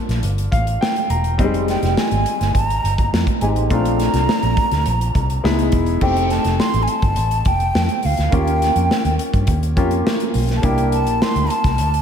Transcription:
Already playing: grand piano A#3 D4 F4 A4
0.09 fingered electric bass A#1, snare, closed hi-hat
0.23 fingered electric bass G1, closed hi-hat
0.38 closed hi-hat
0.52 fingered electric bass A1, grand piano F5, kick, closed hi-hat
0.67 closed hi-hat
0.81 grand piano G5, snare
0.96 closed hi-hat
1.10 fingered electric bass E1, grand piano A#5, closed hi-hat
1.24 closed hi-hat
1.39 fingered electric bass F1, grand piano G3 C4 D#4, kick, closed hi-hat
1.44 grand piano G#3
1.54 closed hi-hat
1.68 flute G5, snare, closed hi-hat
1.82 fingered electric bass F1, snare, closed hi-hat
1.97 flute G#5, snare
2.11 fingered electric bass G#1, closed hi-hat
2.26 closed hi-hat
2.41 fingered electric bass G1, snare, closed hi-hat
2.55 fingered electric bass G#1, flute A#5, kick, closed hi-hat
2.70 closed hi-hat
2.84 fingered electric bass G1, closed hi-hat
2.98 kick, closed hi-hat
3.13 fingered electric bass F2, snare
3.27 kick, closed hi-hat
3.41 fingered electric bass G#1, grand piano G#3 C4 D#4 G4, flute G#5, closed hi-hat
3.56 fingered electric bass A1, closed hi-hat
3.70 fingered electric bass A#1, grand piano A3 C4 D4 F4, flute A#5, kick, closed hi-hat
3.85 closed hi-hat
4.00 snare, closed hi-hat
4.13 fingered electric bass C2, snare, closed hi-hat
4.29 snare
4.43 fingered electric bass A#1, closed hi-hat
4.57 kick, closed hi-hat
4.71 fingered electric bass D2, snare, closed hi-hat
4.86 fingered electric bass A#1, closed hi-hat
5.01 closed hi-hat
5.15 fingered electric bass C2, kick, closed hi-hat
5.30 closed hi-hat
5.44 fingered electric bass C#2, grand piano G#3 B3 D#4 E4, snare
5.59 closed hi-hat
5.72 fingered electric bass E1, kick, closed hi-hat
5.86 closed hi-hat
6.01 fingered electric bass F1, grand piano A3 C4 D#4 G4, flute G5, kick, crash
6.16 closed hi-hat
6.30 flute A5, snare, closed hi-hat
6.44 fingered electric bass F1, snare, closed hi-hat
6.60 flute C6, snare
6.74 fingered electric bass A1, closed hi-hat
6.83 flute G#5
6.88 flute A5, closed hi-hat
7.02 fingered electric bass G1, kick, closed hi-hat
7.16 fingered electric bass A1, closed hi-hat
7.31 closed hi-hat
7.45 fingered electric bass F1, flute G5, kick, closed hi-hat
7.60 closed hi-hat
7.75 fingered electric bass F2, snare
7.89 closed hi-hat
8.03 fingered electric bass D2, flute F5, open hi-hat
8.17 fingered electric bass D2, snare, closed hi-hat
8.31 fingered electric bass D#2, grand piano A#3 C#4 F4 G4, flute G5, kick, closed hi-hat
8.47 closed hi-hat
8.62 snare, closed hi-hat
8.75 fingered electric bass F2, closed hi-hat
8.91 snare
9.05 fingered electric bass D#2, closed hi-hat
9.19 closed hi-hat
9.34 fingered electric bass G2, kick, closed hi-hat
9.47 fingered electric bass D#2, kick, closed hi-hat
9.63 closed hi-hat
9.76 fingered electric bass F2, grand piano A#3 C#4 F4 G4, kick, closed hi-hat
9.91 closed hi-hat
10.07 snare
10.20 closed hi-hat
10.34 fingered electric bass B1, open hi-hat
10.49 snare, closed hi-hat
10.56 flute A5
10.62 fingered electric bass C2, grand piano A#3 D4 E4 G4, flute G5, kick, closed hi-hat
10.78 closed hi-hat
10.92 flute A5, closed hi-hat
11.07 fingered electric bass A#1, closed hi-hat
11.22 flute C6, snare
11.35 fingered electric bass D2, closed hi-hat
11.50 flute A5, closed hi-hat
11.64 fingered electric bass C2, kick, snare, closed hi-hat
11.78 fingered electric bass D2, closed hi-hat
11.94 closed hi-hat

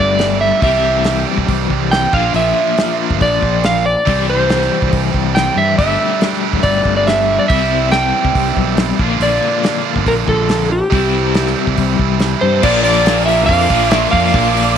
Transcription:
Already playing: fingered electric bass G1, overdriven electric guitar G3 A3 D4 G4, electric slide guitar D5
0.19 snare, open hi-hat
0.41 electric slide guitar E5
0.62 fingered electric bass C2, overdriven electric guitar C3 E3 G3 C4 G4, electric slide guitar E5, kick, open hi-hat
1.04 snare, open hi-hat
1.37 fingered electric bass C2, kick
1.48 fingered electric bass C2, kick, open hi-hat
1.70 fingered electric bass C2, kick
1.91 electric slide guitar G5, snare, open hi-hat
2.13 fingered electric bass A#1, overdriven electric guitar A#2 F3 A#3 D4 F4, electric slide guitar F5, kick
2.34 fingered electric bass A#1, electric slide guitar E5, open hi-hat
2.78 snare, open hi-hat
3.10 fingered electric bass G1, kick
3.21 fingered electric bass A#1, electric slide guitar D5, kick, open hi-hat
3.42 fingered electric bass A#1, kick
3.64 electric slide guitar F5, snare, open hi-hat
3.86 electric slide guitar D5
4.06 fingered electric bass C2, overdriven electric guitar C3 E3 G3 C4 G4, kick, open hi-hat
4.30 electric slide guitar C5
4.49 snare, open hi-hat
4.62 snare
4.82 fingered electric bass C2, kick
4.93 fingered electric bass C2, kick, open hi-hat
5.14 fingered electric bass C2, kick
5.35 electric slide guitar G5, snare, open hi-hat
5.56 fingered electric bass G2, electric slide guitar E5
5.78 fingered electric bass G1, overdriven electric guitar G3 A3 D4 G4, electric slide guitar E5, kick, open hi-hat
6.21 snare, open hi-hat
6.33 snare
6.53 fingered electric bass E1, kick
6.63 fingered electric bass G1, electric slide guitar D5, kick, open hi-hat
6.85 fingered electric bass G1, kick
6.97 electric slide guitar D5
7.07 electric slide guitar E5, snare, open hi-hat
7.39 electric slide guitar D5
7.48 fingered electric bass C2, overdriven electric guitar C3 G3 C4, distorted electric guitar E3, electric slide guitar E5, kick, open hi-hat
7.53 overdriven electric guitar E4
7.91 electric slide guitar G5, snare, open hi-hat
8.24 fingered electric bass C2, kick
8.35 fingered electric bass C2, kick, open hi-hat
8.56 fingered electric bass B1, kick
8.77 snare, open hi-hat
8.99 fingered electric bass A#1, overdriven electric guitar A#2 D3 F3 A#3 F4, distorted electric guitar D4, kick
9.20 fingered electric bass A#1, electric slide guitar D5, open hi-hat
9.64 snare, open hi-hat
9.96 fingered electric bass G1, kick
10.06 fingered electric bass A#1, electric slide guitar A#4, kick, open hi-hat
10.28 fingered electric bass A#1, electric slide guitar A4, kick
10.49 snare, open hi-hat
10.72 electric slide guitar G4
10.91 fingered electric bass C2, overdriven electric guitar C3 G3 C4 E4, distorted electric guitar E3, kick, open hi-hat
11.34 snare, open hi-hat
11.46 snare
11.67 fingered electric bass C2, kick
11.77 fingered electric bass C2, kick, open hi-hat
11.99 fingered electric bass C2, kick
12.20 snare, open hi-hat
12.41 fingered electric bass G2, lead electric guitar A4, electric slide guitar C5
12.62 fingered electric bass A#1, overdriven electric guitar A#2 F3 A#3, distorted electric guitar D3 F4, tonewheel organ A#3 D4 F4 D5, reed electric piano D4 F4 A#4 D5, lead electric guitar A#4, electric slide guitar D5, kick, crash
12.66 overdriven electric guitar D4
12.83 overdriven electric guitar F3 A#3 D4, reed electric piano D4 F4 A#4 D5, lead electric guitar A#4, electric slide guitar D5, open hi-hat
13.05 overdriven electric guitar A#2 F3 A#3, reed electric piano D4 F4 A#4 F5, snare, open hi-hat, tambourine
13.09 overdriven electric guitar D4
13.26 distorted electric guitar A#2 F3 A#3, reed electric piano D4 F4 A#4 D5, lead electric guitar A#4, electric slide guitar E5, open hi-hat
13.46 fingered electric bass F2, reed electric piano D4 F4 A#4 D5, lead electric guitar D5, electric slide guitar F5, kick, open hi-hat
13.69 fingered electric bass A#1, distorted electric guitar A#2 D3 F4, overdriven electric guitar F3 A#3 D4, reed electric piano D4 F4 A#4 D5, kick, open hi-hat
13.90 overdriven electric guitar A#2 F3 A#3 D4, distorted electric guitar D3 F4, reed electric piano D4 F4 A#4 D5, lead electric guitar C#5, electric slide guitar E5, snare, open hi-hat, tambourine
14.11 fingered electric bass F2, overdriven electric guitar F3 A#3 D4, reed electric piano D4 F4 A#4 D5, lead electric guitar D5, electric slide guitar F5, kick, open hi-hat
14.33 fingered electric bass A#1, overdriven electric guitar A#2 F3 A#3 D4, distorted electric guitar D3 F4, reed electric piano D4 F4 A#4 D5, kick, open hi-hat
14.54 overdriven electric guitar F3 A#3 D4, reed electric piano D4 F4 A#4 D5, open hi-hat

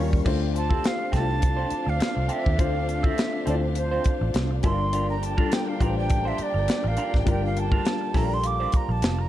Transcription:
Already playing: fingered electric bass D#2, clean electric guitar G3 C#4 F4, grand piano G3 A#3 C#4 F4 A#4, string section C#5 C#6
0.12 muted clean electric guitar stroke, kick
0.24 fingered electric bass D2, french horn section D3 F3 A3 C4 F4, grand piano A3 D4 F4 C5, clean electric guitar C4 F4 A4, string section D4 C5 F5, kick, crash
0.41 muted clean electric guitar stroke
0.54 flute A5, celesta C6, muted clean electric guitar stroke, closed hi-hat
0.69 grand piano A3 D4 F4 G4, clean electric guitar C4 F4 A4, kick
0.84 flute F5, snare, closed hi-hat
0.99 muted clean electric guitar stroke
1.12 fingered electric bass C2, grand piano A3 D4 E4 A4, clean electric guitar C4 F4 A4, flute A5, kick, snare, closed hi-hat
1.20 grand piano F4
1.28 muted clean electric guitar stroke
1.41 muted clean electric guitar stroke, kick, closed hi-hat
1.57 clean electric guitar C4 F4 C5
1.70 muted fingered electric bass stroke, closed hi-hat
1.86 fingered electric bass D2, flute F5, muted clean electric guitar stroke
2.00 muted clean electric guitar stroke, muted fingered electric bass stroke, snare, closed hi-hat
2.15 fingered electric bass C2, muted clean electric guitar stroke
2.29 clean electric guitar C4 F4 A4, flute E5, closed hi-hat
2.45 fingered electric bass D#2, muted clean electric guitar stroke, kick
2.58 fingered electric bass D2, grand piano A3 D4 F4 C5, clean electric guitar C4 F4 A4, french horn section F4, flute F5, kick, closed hi-hat
2.74 muted clean electric guitar stroke
2.88 muted clean electric guitar stroke, closed hi-hat
3.03 grand piano A3 D4 F4 A4, clean electric guitar C4 F4 A4, flute E5, kick
3.18 snare, closed hi-hat
3.33 muted clean electric guitar stroke
3.46 fingered electric bass D2, grand piano A3 D4 E4 C5, clean electric guitar C4 F4 A4, flute D5, closed hi-hat
3.54 grand piano F4
3.62 muted clean electric guitar stroke
3.75 flute C5, muted clean electric guitar stroke, closed hi-hat
3.91 clean electric guitar C4 F4 C5
4.04 muted fingered electric bass stroke, kick, closed hi-hat
4.21 fingered electric bass A1, muted clean electric guitar stroke
4.34 fingered electric bass C2, muted clean electric guitar stroke, snare, closed hi-hat
4.51 muted clean electric guitar stroke
4.63 fingered electric bass G1, french horn section G3 A#3 F4, grand piano G3 D4 F4 A#4, clean electric guitar D4 F4 A#4, string section D4 A#4 G5, flute C6, kick, closed hi-hat
4.80 muted clean electric guitar stroke
4.93 clean electric guitar D4 F4 A#4, closed hi-hat
5.09 flute A#5, muted clean electric guitar stroke
5.22 flute A5, muted clean electric guitar stroke, closed hi-hat
5.38 grand piano G3 D4 F4 A4, clean electric guitar D4 F4 A#4, kick
5.52 flute G5, snare, closed hi-hat
5.67 flute F5, muted clean electric guitar stroke
5.80 fingered electric bass A1, grand piano G3 D4 F4 B4, clean electric guitar D4 F4 A#4, flute G5, kick, closed hi-hat
5.89 grand piano C5
5.96 flute G5, muted clean electric guitar stroke
6.10 celesta A5, muted clean electric guitar stroke, kick, closed hi-hat
6.25 clean electric guitar D4 F4 C5, flute E5
6.38 muted fingered electric bass stroke, muted clean electric guitar stroke, closed hi-hat
6.42 flute D5
6.54 fingered electric bass G1, muted clean electric guitar stroke
6.68 muted clean electric guitar stroke, muted fingered electric bass stroke, snare, closed hi-hat
6.84 fingered electric bass A1, flute F5, muted clean electric guitar stroke
6.97 clean electric guitar D4 F4 A#4, closed hi-hat
7.13 fingered electric bass G#1, muted clean electric guitar stroke, kick, snare
7.25 fingered electric bass G1, grand piano G3 D4 F4 A#4, clean electric guitar D4 F4 A#4, kick, closed hi-hat
7.30 flute G5
7.42 flute F5, muted clean electric guitar stroke
7.56 flute A5, muted clean electric guitar stroke, closed hi-hat
7.71 grand piano G3 D4 F4 G4, clean electric guitar D4 F4 A#4, kick
7.85 snare, closed hi-hat
8.01 muted clean electric guitar stroke
8.14 fingered electric bass A#1, grand piano G3 D4 F4 A4, clean electric guitar D4 F4 A#4, celesta G5, flute A#5, kick, snare, open hi-hat
8.23 grand piano A#4
8.30 flute C6, muted clean electric guitar stroke
8.44 celesta F5, flute D6, muted clean electric guitar stroke, closed hi-hat
8.60 clean electric guitar D4 F4 C5
8.72 muted clean electric guitar stroke, muted fingered electric bass stroke, kick, closed hi-hat
8.77 flute A#5
8.89 fingered electric bass A#1, flute A5, muted clean electric guitar stroke
9.02 fingered electric bass F1, muted clean electric guitar stroke, snare, closed hi-hat
9.19 flute A#5, muted clean electric guitar stroke

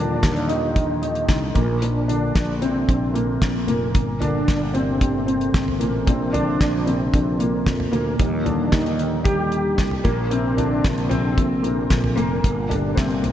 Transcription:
Already playing: fretless electric bass D#2, grand piano A#2 D3 F3 G3 A#3 D4 F4
0.23 fretless electric bass D#2, kick, snare, closed hi-hat
0.36 closed hi-hat
0.48 grand piano D#3 D#4, closed hi-hat
0.76 kick, closed hi-hat
1.02 grand piano D#3 D#4, closed hi-hat
1.15 closed hi-hat
1.29 fretless electric bass C2, kick, snare, closed hi-hat
1.54 fretless electric bass A#1, grand piano A#2 A#3, kick, closed hi-hat
1.81 grand piano F3 A#3 D4, closed hi-hat
2.08 grand piano D3 D4, closed hi-hat
2.35 fretless electric bass A#1, kick, snare, closed hi-hat
2.62 grand piano C3 C4, closed hi-hat
2.88 fretless electric bass A#1, kick, closed hi-hat
3.14 grand piano A#2 A#3, closed hi-hat
3.42 fretless electric bass A#1, kick, snare, closed hi-hat
3.67 fretless electric bass F1, grand piano A#2 A#3, closed hi-hat
3.95 fretless electric bass G1, kick, closed hi-hat
4.20 grand piano D3 D4, closed hi-hat, floor tom
4.48 fretless electric bass G1, kick, snare, closed hi-hat
4.74 grand piano C3 G3 A3 A#3 C4, closed hi-hat
5.01 kick, closed hi-hat
5.26 grand piano C3 C4, closed hi-hat
5.41 closed hi-hat
5.54 fretless electric bass G1, kick, snare, closed hi-hat
5.68 floor tom
5.80 fretless electric bass A1, grand piano A#2 A#3, closed hi-hat
6.07 fretless electric bass A#1, grand piano C3 F3 A#3 C4 D4, kick, closed hi-hat
6.33 grand piano D3 D4, closed hi-hat, floor tom
6.61 fretless electric bass A#1, kick, snare, closed hi-hat
6.86 grand piano C3 F3 A#3 C4 D4, closed hi-hat
7.14 fretless electric bass A#1, kick, closed hi-hat
7.39 grand piano A#2 A#3, closed hi-hat
7.66 fretless electric bass F2, kick, snare, closed hi-hat
7.80 floor tom
7.92 fretless electric bass D2, grand piano A#2 A#3, closed hi-hat
8.19 fretless electric bass D#2, grand piano F3 G3 D#4, kick, closed hi-hat
8.45 grand piano D3 D4, closed hi-hat, floor tom
8.72 fretless electric bass D#2, grand piano D#3 D#4, kick, snare, closed hi-hat
8.86 closed hi-hat
8.99 closed hi-hat
9.24 grand piano G3 G4, kick, closed hi-hat
9.52 closed hi-hat
9.78 fretless electric bass C2, kick, snare, closed hi-hat
9.91 floor tom
10.04 fretless electric bass A#1, grand piano A#2 A#3, kick, closed hi-hat
10.31 grand piano C3 C4, closed hi-hat
10.57 grand piano D3 D4, closed hi-hat, floor tom
10.84 fretless electric bass A#1, grand piano F3 A#3, kick, snare, closed hi-hat
10.98 closed hi-hat
11.09 grand piano C3 C4, closed hi-hat, floor tom
11.38 fretless electric bass A#1, kick, closed hi-hat
11.62 grand piano A#2 A#3, closed hi-hat
11.90 fretless electric bass A#1, kick, snare, closed hi-hat
12.04 floor tom
12.16 fretless electric bass F1, grand piano A#2 A#3, closed hi-hat
12.44 fretless electric bass G1, kick, closed hi-hat
12.69 grand piano D3 G3 A3 A#3 D4, closed hi-hat, floor tom
12.95 fretless electric bass G1, grand piano C3 C4, kick, snare, closed hi-hat
13.10 closed hi-hat
13.22 grand piano A#2 A#3, closed hi-hat, floor tom

